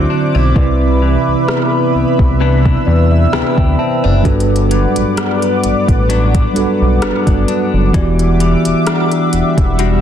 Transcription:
Already playing: clean electric guitar D3 F#3 C4, tine electric piano D3 C4 E4 F#4 C5, analog synth pad C5 D5 E5 D6
0.10 clean electric guitar D4
0.35 analog synth bass B1, clean electric guitar E4
0.54 analog synth bass C2, tine electric piano C3 C4 E4 B4 D5, clean electric guitar C3, analog synth pad B4 E5 B5, kick
1.02 clean electric guitar E3
1.28 analog synth bass C2
1.48 clean electric guitar B3, cross-stick
1.95 analog synth bass C2
2.19 analog synth bass C2, kick
2.40 clean electric guitar E3 B3 D4, analog synth pad E6
2.65 kick
2.86 analog synth bass E2, tine electric piano D5
3.12 tine electric piano E5
3.33 analog synth bass D2, clean electric guitar E3 B3 D4, tine electric piano G5 B5, cross-stick
3.57 analog synth bass D2, tine electric piano E5 G5, kick
3.79 clean electric guitar C4, tine electric piano C5 E5 A5
4.04 analog synth bass F#1, clean electric guitar D4, tine electric piano B4 D5
4.23 analog synth bass G1, clean electric guitar G2, tine electric piano G3 D4 F#4 A4 B4, analog synth pad B4 D5 F#5 D6, kick, closed hi-hat
4.40 closed hi-hat
4.56 closed hi-hat
4.71 clean electric guitar F#3, closed hi-hat
4.96 analog synth bass A1, closed hi-hat
5.17 clean electric guitar B3, cross-stick, closed hi-hat
5.42 closed hi-hat
5.64 analog synth bass A1, closed hi-hat
5.88 analog synth bass A1, kick, closed hi-hat
6.09 clean electric guitar F#3 B3 D4, closed hi-hat
6.35 kick, closed hi-hat
6.54 analog synth bass B1, tine electric piano G3 D4 F#4 A4 B4, closed hi-hat
6.82 analog synth bass B1
7.02 analog synth bass G1, clean electric guitar F#3 B3 D4, cross-stick, closed hi-hat
7.27 analog synth bass G1, kick, closed hi-hat
7.48 clean electric guitar D4, closed hi-hat
7.74 analog synth bass F#1
7.92 analog synth bass E1, tine electric piano E3 B3 F#4 G4 D5, clean electric guitar E3, analog synth pad G3 E5 F#5 D6, kick, closed hi-hat
8.19 closed hi-hat
8.40 clean electric guitar G3, closed hi-hat
8.65 analog synth bass E1, closed hi-hat
8.86 clean electric guitar D4, cross-stick, closed hi-hat
9.12 closed hi-hat
9.33 analog synth bass E1, closed hi-hat
9.58 analog synth bass E1, kick, closed hi-hat
9.79 clean electric guitar G3 D4 F#4, analog synth pad E6, closed hi-hat

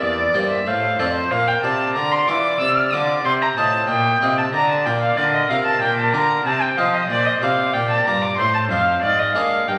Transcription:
Already playing: harpsichord A#3 G4 C5, oboe D5
0.01 harpsichord E2, cello E2, violin D5
0.34 harpsichord G2 A#3 G4 C5, cello G2
0.51 violin E5
0.66 harpsichord A2, cello A2, oboe C5, violin F5
0.99 harpsichord F2 A3 F4 C5, cello F2, violin D5
1.15 violin C5
1.31 cello A#2, harpsichord A#2, oboe A#4, violin F5
1.47 violin G5
1.63 harpsichord C3 F4 D5, cello C3, violin A5
1.95 harpsichord D3, cello D3, oboe D5, violin A#5
2.12 violin C6
2.27 cello E3, harpsichord E3 F4 D5, violin D6
2.60 harpsichord C3, cello C3, violin E6
2.77 violin F6
2.93 cello D3, harpsichord D3 F4 D5, violin D6
3.25 harpsichord C3, cello C3, oboe C5, violin C6
3.42 violin A#5
3.57 cello A2, harpsichord A2 F4 D#5, violin A5
3.88 harpsichord A#2, cello A#2, oboe D#5, violin G5
4.21 cello C3, harpsichord C3 F4 D#5
4.38 violin A5
4.53 harpsichord D3, cello D3, oboe D5, violin A#5
4.70 violin A5
4.85 harpsichord A#2 F4 D5, cello A#2, violin G5
5.02 violin F5
5.17 harpsichord D3, cello D3, oboe A#4, violin D5
5.34 violin D#5
5.50 cello C3, harpsichord C3 F4 A#4, violin F5
5.65 violin A5
5.81 harpsichord A#2, cello A#2, oboe A#4, violin G5
5.98 violin A5
6.13 cello D3, harpsichord D3 F4 A#4, violin A#5
6.45 cello C3, harpsichord C3, oboe C5, violin A5
6.62 violin G5
6.77 cello F3, harpsichord F3 F4 D#5, violin F5
6.94 violin D#5
7.09 cello A#2, harpsichord A#2, violin D5
7.26 violin D#5
7.41 cello C3, harpsichord C3 F4 D5, violin F5
7.73 cello A#2, harpsichord A#2, oboe D5, violin G5
7.90 violin A5
8.06 cello G2, harpsichord G2 F4 D5, violin A#5
8.22 violin D6
8.37 cello A2, harpsichord A2, oboe C5, violin C6
8.54 violin A5
8.70 cello F2, harpsichord F2 F4 C5, violin F5
9.02 cello G#2, harpsichord G#2, violin D5, oboe F5
9.19 violin D#5
9.35 cello G#3, harpsichord G#3 A#3 D4 A#4, violin F5
9.67 cello G2, harpsichord G2, oboe A#4, violin G5

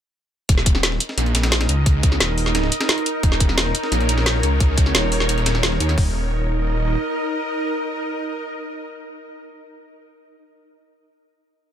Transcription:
0.49 detuned saw bass D#1, synth drone D#4 A#4 D#5, ambient pad D#4, kick, closed hi-hat
0.57 ambient pad A#4, snare
0.66 kick, closed hi-hat
0.75 snare
0.83 snare, closed hi-hat
0.92 snare
1.00 closed hi-hat
1.09 snare
1.14 detuned saw bass A#1, ambient pad A#5, snare, closed hi-hat
1.26 closed hi-hat
1.35 snare, closed hi-hat
1.43 snare, closed hi-hat
1.52 snare, closed hi-hat
1.61 snare, closed hi-hat
1.69 detuned saw bass C#2, closed hi-hat
1.86 kick, closed hi-hat
2.03 kick, closed hi-hat
2.12 snare
2.20 detuned saw bass D#1, snare, closed hi-hat
2.38 closed hi-hat, open hi-hat
2.46 snare
2.55 snare, closed hi-hat
2.63 snare
2.72 closed hi-hat
2.80 snare, closed hi-hat
2.89 snare, closed hi-hat
2.98 closed hi-hat
3.06 closed hi-hat
3.23 detuned saw bass D#1, synth drone C#5, kick, closed hi-hat
3.32 snare
3.40 kick, closed hi-hat
3.49 snare
3.58 snare, closed hi-hat
3.66 snare
3.75 closed hi-hat
3.83 snare
3.92 detuned saw bass A#1, snare, closed hi-hat
4.00 closed hi-hat
4.09 closed hi-hat
4.18 snare
4.26 snare, closed hi-hat
4.35 snare
4.43 detuned saw bass C#2, closed hi-hat
4.60 kick, closed hi-hat
4.78 kick, closed hi-hat
4.86 snare
4.95 detuned saw bass D#1, snare, closed hi-hat
5.12 closed hi-hat, open hi-hat
5.20 snare
5.29 closed hi-hat
5.38 closed hi-hat
5.46 snare, closed hi-hat
5.55 snare
5.63 snare, closed hi-hat
5.72 snare
5.80 detuned saw bass D#2, closed hi-hat
5.89 snare, closed hi-hat
5.98 detuned saw bass D#1, synth drone D#4 A#4 D#5, ambient pad D#4, kick, open hi-hat
6.03 ambient pad A#4
6.08 ambient pad A#5

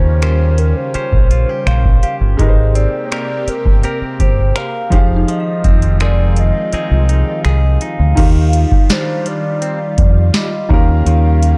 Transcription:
Already playing: fingered electric bass D#2, analog synth pad C#3 G3 C#4 F4, grand piano D#3 A#3 C#4 F4 G4 A#4, clean electric guitar D#3 C#4, soft synth lead C5
0.22 clean electric guitar C#4 G4 C5, synth bell A#4, finger snap, closed hi-hat
0.58 soft synth lead A#4, closed hi-hat
0.77 soft synth lead C5
0.94 clean electric guitar C#4 G4 C5, muted fingered electric bass stroke, closed hi-hat
1.13 fingered electric bass A#1, kick
1.31 clean electric guitar F4, closed hi-hat
1.49 clean electric guitar G4
1.66 fingered electric bass A#1, clean electric guitar C5, soft synth lead F5, finger snap, closed hi-hat
1.85 kick
2.02 clean electric guitar G4, soft synth lead F5, closed hi-hat
2.21 fingered electric bass G1
2.37 fingered electric bass G#1, analog synth pad C3 A#3 G4, grand piano G#3 D#4 G4 A#4, clean electric guitar G#3, synth bell G4, soft synth lead D#5, kick, closed hi-hat
2.42 grand piano B4
2.49 grand piano C5
2.75 clean electric guitar C4, soft synth lead D5, closed hi-hat
3.05 soft synth lead C#5
3.11 clean electric guitar C4 G4 A#4, soft synth lead D5, finger snap, closed hi-hat
3.47 soft synth lead A#4, muted fingered electric bass stroke, closed hi-hat
3.66 fingered electric bass G1, kick
3.83 clean electric guitar C4 G4 A#4, soft synth lead A#4, closed hi-hat
4.02 muted fingered electric bass stroke
4.20 fingered electric bass G1, clean electric guitar G4, soft synth lead C5, kick, closed hi-hat
4.56 clean electric guitar A#4, soft synth lead F5, finger snap, closed hi-hat
4.90 fingered electric bass F1, analog synth pad D#3 G#3 F4, grand piano F3 D#4 G4 G#4, clean electric guitar F3, synth bell C5, soft synth lead F5, kick, closed hi-hat
4.95 grand piano F5
5.16 synth bell D#4
5.28 clean electric guitar F3, soft synth lead D#5, closed hi-hat
5.40 synth bell F5
5.64 fingered electric bass F1, clean electric guitar C4, kick, closed hi-hat
5.82 closed hi-hat
6.00 clean electric guitar C4 D#4 G#4, synth bell A#4, soft synth lead D5, finger snap, closed hi-hat
6.36 soft synth lead D#5, closed hi-hat
6.73 clean electric guitar C4 D#4 G#4, synth bell D#5, muted fingered electric bass stroke, closed hi-hat
6.91 fingered electric bass C2
7.09 clean electric guitar D#4, closed hi-hat
7.45 fingered electric bass C2, clean electric guitar G#4, soft synth lead D#5, finger snap, closed hi-hat
7.81 clean electric guitar D#4, soft synth lead F5, closed hi-hat
7.99 fingered electric bass D2
8.15 fingered electric bass D#2, grand piano D#3 D#4 F4 G4, analog synth pad D#3 G3 F4, clean electric guitar D#3, kick, closed hi-hat, crash
8.20 grand piano F5
8.53 closed hi-hat
8.72 kick
8.90 clean electric guitar G3 D4 F4, soft synth lead C5, snare, closed hi-hat
9.26 clean electric guitar G3, soft synth lead D5, closed hi-hat
9.62 clean electric guitar C4, closed hi-hat
9.98 fingered electric bass F2, kick, closed hi-hat
10.34 clean electric guitar G3, soft synth lead D#5, snare, closed hi-hat
10.69 fingered electric bass D#2, analog synth pad C#3 G3 C#4, grand piano D#3 A#3 C#4 F4 G4, clean electric guitar D#3, soft synth lead F5, kick
10.74 grand piano A#4
11.06 fingered electric bass D#2, clean electric guitar D#3, closed hi-hat
11.43 closed hi-hat

